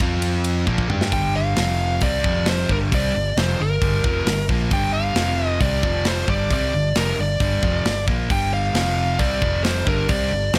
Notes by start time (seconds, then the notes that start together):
0.00 F2 F3 C4 F4, kick, ride
0.22 ride
0.44 ride
0.67 A#1 A#2 F3 A#3, kick
0.78 kick
0.90 G2 G3 D4 G4, mid tom
1.01 snare
1.12 G1 G2 D3 G3 G5, kick, open hi-hat
1.37 F5
1.56 F1 F2 C3 F3, snare, open hi-hat
2.01 C2 C3 G3 C4 D5, kick, open hi-hat
2.24 F1 F2 C3 F3, kick
2.46 C5, snare, open hi-hat
2.69 G1 G2 D3 G3 A#4, kick
2.92 C2 C3 G3 C4 D5, kick, open hi-hat
3.14 G1 G2 D3
3.37 F1 F2 C3 F3 C5, snare, open hi-hat
3.60 G1 G2 D3 A#4
3.82 G1 G2 D3 G3, kick, open hi-hat
4.03 F1 F2 C3 F3, kick
4.26 G1 G2 D3, snare, open hi-hat
4.48 A#1 A#2 F3 A#3, kick
4.71 G1 G2 D3 G3 G5, kick, open hi-hat
4.94 F5
5.15 F1 F2 C3 F3, snare, open hi-hat
5.46 D#5
5.60 C2 C3 G3 C4 D5, kick, open hi-hat
5.82 F1 F2 C3 F3, kick
6.05 C5, snare, open hi-hat
6.27 G1 G2 D3 G3 D5, kick
6.50 C2 C3 G3 C4 D5, kick, open hi-hat
6.74 G1 G2 D3
6.95 F1 F2 C3 F3 A#4, snare, open hi-hat
7.18 G1 G2 D3 D5
7.40 G1 G2 D3 G3, kick, open hi-hat
7.62 F1 F2 C3 F3, kick
7.85 G1 G2 D3, snare, open hi-hat
8.08 A#1 A#2 F3 A#3, kick
8.30 G1 G2 D3 G3 G5, kick, open hi-hat
8.54 F5
8.74 F1 F2 C3 F3, snare, open hi-hat
9.19 C2 C3 G3 C4 D5, kick, open hi-hat
9.42 F1 F2 C3 F3, kick
9.64 C5, snare, open hi-hat
9.87 G1 G2 D3 G3 A#4, kick
10.09 C2 C3 G3 C4 D5, kick, open hi-hat
10.31 G1 G2 D3
10.54 F1 F2 C3 F3 C5, snare, open hi-hat